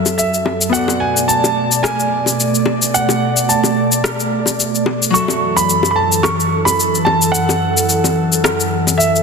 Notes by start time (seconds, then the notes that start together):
Already playing: F#2 F#3 F#4 A4 E5
0.06 high bongo, shaker
0.18 E5, shaker
0.34 shaker
0.46 high bongo
0.61 shaker
0.69 B2 A3 B3 F#4 D5 F#5
0.74 A4 D5, shaker
0.88 high bongo, shaker
1.00 G#5
1.17 shaker
1.28 A5, shaker
1.44 high bongo, shaker
1.72 shaker
1.83 G#5, cross-stick, high bongo, shaker
2.00 shaker
2.26 high bongo, shaker
2.40 shaker
2.55 shaker
2.66 high bongo
2.82 shaker
2.94 F#5, shaker
3.09 high bongo, shaker
3.37 shaker
3.49 A5, shaker
3.64 high bongo, shaker
3.92 shaker
4.04 cross-stick, high bongo, shaker
4.20 shaker
4.46 high bongo, shaker
4.60 shaker
4.75 shaker
4.86 high bongo
5.03 shaker
5.10 F#3 F#4 C#6
5.15 F#2 E3 A4 E5, shaker
5.28 high bongo, shaker
5.57 B5, shaker
5.70 shaker
5.83 high bongo, shaker
5.91 B5
5.96 A5
6.12 shaker
6.23 C#6, cross-stick, high bongo, shaker
6.40 shaker
6.65 B5, high bongo, shaker
6.80 shaker
6.95 shaker
7.05 A5, high bongo
7.22 shaker
7.32 F#5, shaker
7.49 high bongo, shaker
7.77 shaker
7.89 shaker
8.04 high bongo, shaker
8.33 shaker
8.44 cross-stick, high bongo, shaker
8.60 shaker
8.87 high bongo, shaker
8.98 E5, shaker
9.16 shaker